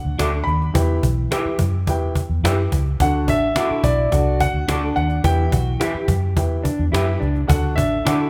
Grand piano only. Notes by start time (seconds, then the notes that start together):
Already playing: F#5
0.44 B5
3.02 F#5
3.29 E5
3.84 D5
4.41 F#5
4.96 F#5
5.25 G5
7.48 F#5
7.76 E5